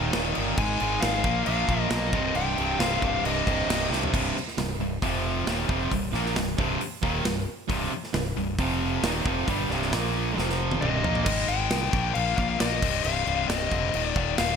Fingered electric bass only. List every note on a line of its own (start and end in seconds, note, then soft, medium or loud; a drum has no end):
0.15 0.33 D#1 medium
0.38 0.55 G1 medium
0.58 0.76 G#1 medium
0.81 0.99 G#1 medium
1.03 1.21 G#1 medium
1.24 1.43 A#1 loud
1.47 1.65 A#1 medium
1.68 1.87 A#1 medium
1.91 2.14 B1 loud
2.12 2.31 C1 medium
2.36 2.54 C1 medium
2.59 2.77 C1 medium
2.79 2.98 C1 loud
3.02 3.21 C1 loud
3.23 3.42 C1 medium
3.47 3.65 C1 medium
3.68 3.87 C1 medium
3.90 4.09 C2 medium
4.13 4.34 C1 medium
4.36 muted fingered electric bass stroke soft
4.58 4.79 C1 medium
4.80 5.01 C1 medium
5.02 5.44 F1 medium
5.47 5.68 D#1 medium
5.69 5.90 F1 loud
5.92 6.13 C1 medium
6.14 6.35 A#1 loud
6.36 6.57 C1 medium
6.58 6.79 C1 loud
6.81 muted fingered electric bass stroke soft
7.03 7.24 D#1 loud
7.25 7.46 C1 medium
7.69 7.90 C1 loud
7.92 muted fingered electric bass stroke soft
8.14 8.35 C1 medium
8.36 8.57 C1 medium
8.58 9.00 F1 medium
9.03 9.24 D#1 medium
9.25 9.47 F1 medium
9.48 9.69 G1 medium
9.70 9.91 C1 medium
9.92 10.34 A#1 loud
10.37 10.79 F1 medium
10.82 11.03 C1 medium
11.04 11.25 A#1 loud
11.26 11.45 G#1 loud
11.48 11.67 G#1 medium
11.71 11.89 C2 loud
11.93 12.12 A#1 medium
12.16 12.34 A#1 medium
12.38 12.56 A#1 medium
12.61 12.79 A#1 loud
12.82 13.01 C1 medium
13.05 13.23 C1 medium
13.27 13.46 C1 loud
13.49 13.68 C1 medium
13.72 13.90 F1 loud
13.94 14.13 D#1 medium
14.16 14.34 D#1 medium
14.39 14.56 D#1 loud